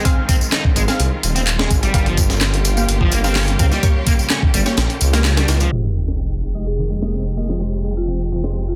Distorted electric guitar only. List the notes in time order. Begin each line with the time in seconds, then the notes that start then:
0.29 C4
0.52 D#4
0.76 G#3
1.35 C4
1.59 G#3
1.83 G3
1.94 G3
2.06 F3
3.01 F3
3.13 A#3
3.25 C4
3.36 C#4
3.60 C4
3.72 G3
4.07 A#3
4.31 C#4
4.54 G3
5.14 A#3
5.37 G3
5.61 F3
5.72 F3
5.84 D#3
6.79 D#3
6.90 G#3
7.02 A#3
7.13 C4
7.37 A#3
7.49 F3
7.84 G#3
8.08 C4
8.32 F3